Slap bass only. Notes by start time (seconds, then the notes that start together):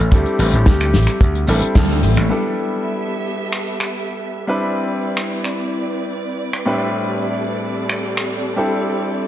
0.12 D2
0.39 A1
0.53 A1
0.94 A1
1.21 D2
1.48 A1
1.62 muted slap bass stroke
1.76 D2
2.03 A1
2.17 A1